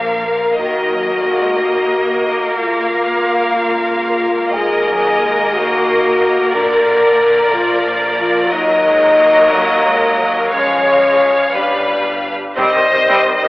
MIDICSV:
0, 0, Header, 1, 9, 480
1, 0, Start_track
1, 0, Key_signature, -6, "minor"
1, 0, Tempo, 661521
1, 427, Time_signature, 6, 3, 24, 8
1, 6665, Tempo, 677201
1, 9709, End_track
2, 0, Start_track
2, 0, Title_t, "Violin section"
2, 0, Program_c, 0, 48
2, 0, Note_on_c, 0, 77, 35
2, 426, Note_off_c, 0, 77, 0
2, 433, Note_on_c, 0, 75, 37
2, 1838, Note_off_c, 0, 75, 0
2, 1873, Note_on_c, 0, 77, 41
2, 3292, Note_on_c, 0, 75, 45
2, 3303, Note_off_c, 0, 77, 0
2, 4710, Note_off_c, 0, 75, 0
2, 4747, Note_on_c, 0, 74, 49
2, 6159, Note_off_c, 0, 74, 0
2, 6178, Note_on_c, 0, 75, 58
2, 7610, Note_on_c, 0, 77, 47
2, 7615, Note_off_c, 0, 75, 0
2, 8895, Note_off_c, 0, 77, 0
2, 9069, Note_on_c, 0, 75, 66
2, 9709, Note_off_c, 0, 75, 0
2, 9709, End_track
3, 0, Start_track
3, 0, Title_t, "Violin section"
3, 0, Program_c, 1, 48
3, 0, Note_on_c, 1, 70, 33
3, 395, Note_off_c, 1, 70, 0
3, 433, Note_on_c, 1, 70, 31
3, 3273, Note_off_c, 1, 70, 0
3, 3302, Note_on_c, 1, 70, 45
3, 6158, Note_off_c, 1, 70, 0
3, 6180, Note_on_c, 1, 70, 49
3, 7587, Note_off_c, 1, 70, 0
3, 7621, Note_on_c, 1, 73, 42
3, 8323, Note_off_c, 1, 73, 0
3, 8336, Note_on_c, 1, 71, 38
3, 8925, Note_off_c, 1, 71, 0
3, 9063, Note_on_c, 1, 72, 52
3, 9709, Note_off_c, 1, 72, 0
3, 9709, End_track
4, 0, Start_track
4, 0, Title_t, "French horn section"
4, 0, Program_c, 2, 60
4, 0, Note_on_c, 2, 58, 49
4, 185, Note_off_c, 2, 58, 0
4, 189, Note_on_c, 2, 70, 53
4, 424, Note_off_c, 2, 70, 0
4, 425, Note_on_c, 2, 66, 67
4, 1834, Note_off_c, 2, 66, 0
4, 1865, Note_on_c, 2, 65, 58
4, 2568, Note_off_c, 2, 65, 0
4, 2587, Note_on_c, 2, 65, 68
4, 3287, Note_off_c, 2, 65, 0
4, 3291, Note_on_c, 2, 68, 77
4, 4015, Note_off_c, 2, 68, 0
4, 4017, Note_on_c, 2, 66, 68
4, 4741, Note_off_c, 2, 66, 0
4, 4746, Note_on_c, 2, 70, 82
4, 5459, Note_on_c, 2, 65, 70
4, 5465, Note_off_c, 2, 70, 0
4, 5703, Note_off_c, 2, 65, 0
4, 5939, Note_on_c, 2, 65, 68
4, 6166, Note_off_c, 2, 65, 0
4, 6190, Note_on_c, 2, 63, 92
4, 6892, Note_off_c, 2, 63, 0
4, 6901, Note_on_c, 2, 58, 75
4, 7617, Note_off_c, 2, 58, 0
4, 7621, Note_on_c, 2, 61, 81
4, 8323, Note_off_c, 2, 61, 0
4, 8335, Note_on_c, 2, 62, 56
4, 9055, Note_off_c, 2, 62, 0
4, 9068, Note_on_c, 2, 67, 56
4, 9071, Note_on_c, 2, 60, 56
4, 9709, Note_off_c, 2, 60, 0
4, 9709, Note_off_c, 2, 67, 0
4, 9709, End_track
5, 0, Start_track
5, 0, Title_t, "Viola section"
5, 0, Program_c, 3, 48
5, 0, Note_on_c, 3, 58, 38
5, 396, Note_off_c, 3, 58, 0
5, 427, Note_on_c, 3, 58, 39
5, 3270, Note_off_c, 3, 58, 0
5, 3297, Note_on_c, 3, 58, 47
5, 6156, Note_off_c, 3, 58, 0
5, 6182, Note_on_c, 3, 54, 56
5, 7610, Note_on_c, 3, 56, 50
5, 7617, Note_off_c, 3, 54, 0
5, 8331, Note_on_c, 3, 55, 35
5, 8332, Note_off_c, 3, 56, 0
5, 8910, Note_off_c, 3, 55, 0
5, 9066, Note_on_c, 3, 55, 46
5, 9067, Note_on_c, 3, 60, 52
5, 9180, Note_off_c, 3, 55, 0
5, 9180, Note_off_c, 3, 60, 0
5, 9185, Note_on_c, 3, 51, 31
5, 9189, Note_on_c, 3, 55, 34
5, 9234, Note_off_c, 3, 51, 0
5, 9237, Note_off_c, 3, 55, 0
5, 9309, Note_on_c, 3, 51, 34
5, 9310, Note_on_c, 3, 48, 38
5, 9357, Note_off_c, 3, 51, 0
5, 9358, Note_off_c, 3, 48, 0
5, 9425, Note_on_c, 3, 60, 48
5, 9426, Note_on_c, 3, 55, 52
5, 9538, Note_off_c, 3, 55, 0
5, 9538, Note_off_c, 3, 60, 0
5, 9551, Note_on_c, 3, 51, 37
5, 9553, Note_on_c, 3, 55, 35
5, 9598, Note_off_c, 3, 51, 0
5, 9599, Note_off_c, 3, 55, 0
5, 9671, Note_on_c, 3, 48, 39
5, 9671, Note_on_c, 3, 51, 41
5, 9709, Note_off_c, 3, 48, 0
5, 9709, Note_off_c, 3, 51, 0
5, 9709, End_track
6, 0, Start_track
6, 0, Title_t, "Cello section"
6, 0, Program_c, 4, 48
6, 0, Note_on_c, 4, 53, 34
6, 426, Note_off_c, 4, 53, 0
6, 431, Note_on_c, 4, 51, 35
6, 664, Note_off_c, 4, 51, 0
6, 670, Note_on_c, 4, 54, 33
6, 906, Note_on_c, 4, 56, 43
6, 908, Note_off_c, 4, 54, 0
6, 1140, Note_off_c, 4, 56, 0
6, 1146, Note_on_c, 4, 58, 44
6, 3299, Note_off_c, 4, 58, 0
6, 3300, Note_on_c, 4, 56, 43
6, 3539, Note_off_c, 4, 56, 0
6, 3540, Note_on_c, 4, 54, 42
6, 3775, Note_off_c, 4, 54, 0
6, 3781, Note_on_c, 4, 56, 49
6, 4016, Note_off_c, 4, 56, 0
6, 4026, Note_on_c, 4, 58, 54
6, 4742, Note_on_c, 4, 50, 46
6, 4746, Note_off_c, 4, 58, 0
6, 5458, Note_on_c, 4, 53, 53
6, 5463, Note_off_c, 4, 50, 0
6, 6181, Note_on_c, 4, 54, 53
6, 6183, Note_off_c, 4, 53, 0
6, 6422, Note_on_c, 4, 56, 49
6, 6424, Note_off_c, 4, 54, 0
6, 6661, Note_off_c, 4, 56, 0
6, 6665, Note_on_c, 4, 58, 55
6, 6904, Note_off_c, 4, 58, 0
6, 6907, Note_on_c, 4, 54, 52
6, 7141, Note_on_c, 4, 56, 47
6, 7144, Note_off_c, 4, 54, 0
6, 7378, Note_on_c, 4, 54, 44
6, 7380, Note_off_c, 4, 56, 0
6, 7617, Note_off_c, 4, 54, 0
6, 7622, Note_on_c, 4, 53, 46
6, 8324, Note_off_c, 4, 53, 0
6, 8336, Note_on_c, 4, 55, 36
6, 8696, Note_off_c, 4, 55, 0
6, 9071, Note_on_c, 4, 48, 45
6, 9119, Note_off_c, 4, 48, 0
6, 9191, Note_on_c, 4, 48, 31
6, 9239, Note_off_c, 4, 48, 0
6, 9310, Note_on_c, 4, 48, 34
6, 9358, Note_off_c, 4, 48, 0
6, 9432, Note_on_c, 4, 48, 52
6, 9479, Note_off_c, 4, 48, 0
6, 9550, Note_on_c, 4, 48, 41
6, 9597, Note_off_c, 4, 48, 0
6, 9669, Note_on_c, 4, 48, 38
6, 9709, Note_off_c, 4, 48, 0
6, 9709, End_track
7, 0, Start_track
7, 0, Title_t, "Trombone section"
7, 0, Program_c, 5, 61
7, 9066, Note_on_c, 5, 55, 49
7, 9069, Note_on_c, 5, 51, 47
7, 9709, Note_off_c, 5, 51, 0
7, 9709, Note_off_c, 5, 55, 0
7, 9709, End_track
8, 0, Start_track
8, 0, Title_t, "Double bass section"
8, 0, Program_c, 6, 48
8, 0, Note_on_c, 6, 34, 37
8, 398, Note_off_c, 6, 34, 0
8, 428, Note_on_c, 6, 39, 37
8, 1864, Note_off_c, 6, 39, 0
8, 1868, Note_on_c, 6, 37, 37
8, 3272, Note_off_c, 6, 37, 0
8, 3297, Note_on_c, 6, 39, 47
8, 4739, Note_on_c, 6, 34, 50
8, 4741, Note_off_c, 6, 39, 0
8, 6156, Note_off_c, 6, 34, 0
8, 6179, Note_on_c, 6, 39, 54
8, 7587, Note_off_c, 6, 39, 0
8, 7622, Note_on_c, 6, 37, 46
8, 8335, Note_on_c, 6, 31, 39
8, 8338, Note_off_c, 6, 37, 0
8, 8913, Note_off_c, 6, 31, 0
8, 9068, Note_on_c, 6, 36, 47
8, 9117, Note_off_c, 6, 36, 0
8, 9314, Note_on_c, 6, 36, 34
8, 9361, Note_off_c, 6, 36, 0
8, 9555, Note_on_c, 6, 36, 39
8, 9601, Note_off_c, 6, 36, 0
8, 9709, End_track
9, 0, Start_track
9, 0, Title_t, "Taiko and cinematic ensemble drums"
9, 431, Note_on_c, 9, 41, 44
9, 503, Note_off_c, 9, 41, 0
9, 1509, Note_on_c, 9, 41, 23
9, 1581, Note_off_c, 9, 41, 0
9, 3300, Note_on_c, 9, 41, 47
9, 3372, Note_off_c, 9, 41, 0
9, 6185, Note_on_c, 9, 41, 49
9, 6258, Note_off_c, 9, 41, 0
9, 9072, Note_on_c, 9, 41, 77
9, 9143, Note_off_c, 9, 41, 0
9, 9709, End_track
0, 0, End_of_file